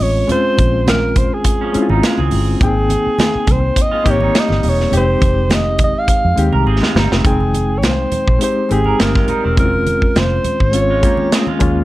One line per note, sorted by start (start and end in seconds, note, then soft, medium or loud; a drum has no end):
0.00 0.22 A1 medium
0.00 0.27 G#3 medium
0.00 0.28 C4 medium
0.00 0.29 C#4 medium
0.00 0.30 F4 medium
0.00 0.30 C#5 medium
0.00 open hi-hat medium
0.27 1.12 G#3 medium
0.27 1.12 C4 medium
0.27 1.12 C#4 medium
0.27 1.13 F4 medium
0.27 closed hi-hat medium
0.27 muted conga soft
0.27 low conga medium
0.32 0.84 C5 loud
0.58 1.28 A#1 medium
0.58 kick medium
0.58 closed hi-hat medium
0.58 muted conga soft
0.58 high conga medium
0.87 1.20 A#4 medium
0.87 snare loud
0.87 closed hi-hat medium
0.87 muted conga soft
0.87 high conga medium
1.16 1.35 C5 medium
1.16 kick medium
1.16 closed hi-hat medium
1.16 muted conga soft
1.16 high conga medium
1.16 low conga medium
1.34 1.91 G#4 medium
1.44 kick medium
1.44 closed hi-hat loud
1.61 1.89 F3 medium
1.61 1.88 C#4 medium
1.73 2.36 G#3 medium
1.73 2.36 C4 medium
1.73 2.37 C#4 medium
1.73 1.82 E4 medium
1.73 muted fingered electric bass stroke soft
1.73 closed hi-hat medium
1.82 2.41 F4 medium
1.89 2.00 G#1 medium
1.89 2.03 G3 medium
1.89 2.02 D#4 medium
1.89 high conga medium
2.03 2.18 G#3 medium
2.03 2.18 F4 medium
2.03 snare loud
2.03 closed hi-hat medium
2.03 muted conga soft
2.18 2.29 C#2 medium
2.18 2.59 C4 medium
2.18 2.59 G#4 medium
2.18 high conga medium
2.31 2.54 G1 medium
2.31 open hi-hat medium
2.31 muted conga soft
2.31 low conga medium
2.60 2.95 G#1 loud
2.60 3.44 A#3 medium
2.60 3.44 C4 medium
2.60 3.45 D#4 medium
2.60 3.45 G5 medium
2.60 kick loud
2.60 closed hi-hat medium
2.60 low conga medium
2.64 3.53 G#4 medium
2.89 closed hi-hat medium
2.89 high conga medium
3.07 muted fingered electric bass stroke soft
3.19 snare loud
3.19 closed hi-hat medium
3.19 muted conga soft
3.19 high conga medium
3.35 muted fingered electric bass stroke soft
3.47 3.70 C2 medium
3.47 kick medium
3.47 closed hi-hat medium
3.47 muted conga soft
3.47 high conga medium
3.47 low conga medium
3.52 3.83 C5 medium
3.76 kick medium
3.76 closed hi-hat loud
3.82 4.12 D#5 loud
3.91 4.05 G#3 medium
3.91 4.04 F4 medium
4.04 4.28 G#1 medium
4.04 4.67 A#3 medium
4.04 4.21 A#3 medium
4.04 4.68 C4 medium
4.04 4.68 D#4 medium
4.04 4.20 G4 medium
4.04 4.69 G4 medium
4.04 kick medium
4.04 closed hi-hat medium
4.04 muted conga soft
4.11 4.42 C#5 loud
4.21 4.89 G3 medium
4.21 4.89 D#4 medium
4.21 high conga medium
4.35 snare loud
4.35 closed hi-hat loud
4.35 muted conga soft
4.40 4.70 D#5 loud
4.49 4.60 G1 medium
4.49 snare soft
4.49 high conga medium
4.63 4.85 E1 medium
4.63 open hi-hat medium
4.63 muted conga soft
4.63 low conga medium
4.69 4.95 C#5 medium
4.80 snare soft
4.91 5.14 F1 medium
4.91 5.75 G#3 medium
4.91 5.75 C4 medium
4.91 5.76 D#4 medium
4.91 5.76 G4 medium
4.91 closed hi-hat medium
4.91 muted conga soft
4.91 low conga medium
4.97 5.56 C5 loud
5.21 5.92 F1 medium
5.21 kick medium
5.21 closed hi-hat medium
5.21 high conga medium
5.50 snare loud
5.50 closed hi-hat medium
5.50 muted conga soft
5.50 high conga medium
5.55 5.82 D#5 loud
5.79 kick medium
5.79 closed hi-hat medium
5.79 muted conga soft
5.79 high conga medium
5.79 low conga medium
5.84 6.01 D#5 loud
5.99 6.55 F5 loud
6.08 kick medium
6.08 closed hi-hat loud
6.08 muted conga soft
6.25 6.34 F2 medium
6.36 6.49 D#2 loud
6.36 6.99 G#3 medium
6.36 7.00 C4 medium
6.36 7.00 D#4 medium
6.36 7.01 G4 medium
6.36 closed hi-hat medium
6.53 6.64 C2 medium
6.53 6.65 A#4 medium
6.53 high conga medium
6.66 6.78 G#1 medium
6.66 6.81 C4 medium
6.66 6.81 G#4 medium
6.66 muted conga soft
6.81 6.95 G#3 medium
6.81 6.95 F4 medium
6.81 snare medium
6.81 high conga medium
6.95 7.07 G1 medium
6.95 7.11 G3 medium
6.95 7.11 D#4 medium
6.95 snare medium
6.95 muted conga soft
6.95 low conga medium
7.11 7.22 F1 medium
7.11 7.39 D#3 medium
7.11 7.39 C4 medium
7.11 snare medium
7.23 7.83 F1 loud
7.23 8.07 G#3 medium
7.23 8.08 C4 medium
7.23 8.08 D#4 medium
7.23 7.80 G#4 medium
7.23 8.09 G5 medium
7.23 kick loud
7.23 closed hi-hat medium
7.23 muted conga soft
7.23 low conga medium
7.40 high conga soft
7.54 closed hi-hat medium
7.54 high conga medium
7.78 7.87 C#5 medium
7.83 8.05 C2 medium
7.83 8.42 C5 medium
7.83 snare loud
7.83 closed hi-hat medium
7.83 high conga medium
8.12 closed hi-hat medium
8.12 muted conga soft
8.12 high conga medium
8.12 low conga medium
8.28 8.38 A#1 medium
8.28 kick medium
8.39 8.61 G#3 medium
8.39 8.62 C4 medium
8.39 8.62 D#4 medium
8.39 8.63 G4 medium
8.39 closed hi-hat medium
8.44 8.74 C5 medium
8.69 8.92 G#1 medium
8.69 9.32 G#3 medium
8.69 9.33 C4 medium
8.69 9.33 D#4 medium
8.69 9.34 G4 medium
8.69 9.03 G#4 medium
8.69 closed hi-hat medium
8.69 muted conga soft
8.84 8.98 A#4 medium
8.84 high conga medium
8.99 9.22 G1 medium
8.99 9.14 C4 medium
8.99 9.14 G#4 medium
8.99 9.58 A#4 medium
8.99 snare loud
8.99 closed hi-hat medium
9.14 9.28 G#3 medium
9.14 9.27 F4 medium
9.14 kick loud
9.14 snare soft
9.14 high conga medium
9.28 9.43 G3 medium
9.28 9.43 D#4 medium
9.28 closed hi-hat medium
9.28 muted conga soft
9.28 low conga soft
9.44 9.57 E1 medium
9.44 9.72 D#3 medium
9.44 9.72 C4 medium
9.56 10.01 F1 loud
9.56 10.40 G#3 medium
9.56 10.41 C4 medium
9.56 10.41 C#4 medium
9.56 9.65 E4 medium
9.56 10.19 A#4 medium
9.56 kick loud
9.56 closed hi-hat medium
9.56 low conga medium
9.65 10.45 F4 medium
9.73 high conga soft
9.86 closed hi-hat medium
9.86 muted conga soft
9.86 high conga medium
10.02 kick medium
10.15 10.37 F1 medium
10.15 10.65 C5 loud
10.15 snare loud
10.15 closed hi-hat medium
10.15 high conga medium
10.44 closed hi-hat medium
10.44 high conga medium
10.44 low conga medium
10.60 11.04 G#1 medium
10.60 11.49 C#5 loud
10.60 kick medium
10.72 10.94 G#3 medium
10.72 10.95 C4 medium
10.72 10.95 C#4 medium
10.72 10.96 F4 medium
10.72 closed hi-hat medium
10.72 muted conga soft
10.90 11.03 G#3 medium
10.90 11.02 F4 soft
11.02 11.58 G#3 medium
11.02 11.59 A#3 medium
11.02 11.31 A#3 medium
11.02 11.59 C#4 medium
11.02 11.61 F4 medium
11.02 11.30 G4 medium
11.02 kick medium
11.02 closed hi-hat medium
11.17 high conga medium
11.32 11.47 C4 medium
11.32 11.47 G#4 medium
11.32 snare loud
11.32 closed hi-hat medium
11.47 11.76 G#3 medium
11.47 11.75 F4 medium
11.47 high conga medium
11.59 11.84 D#2 medium
11.59 11.84 G#3 medium
11.59 11.84 A#3 medium
11.59 11.84 C#4 medium
11.59 11.84 F4 medium
11.59 kick medium
11.59 closed hi-hat medium
11.59 low conga medium